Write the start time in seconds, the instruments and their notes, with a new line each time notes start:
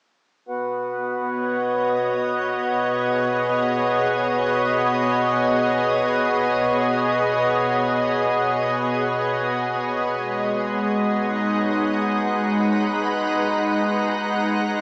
0.49 ambient pad B2, harmonium B3 F#4
0.63 ambient pad B3
1.14 ambient pad C#5
1.33 ambient pad D#5
2.78 ambient pad G#4
10.11 ambient pad G#3
10.95 ambient pad D#4
11.08 ambient pad F#5
12.27 ambient pad B4 A#5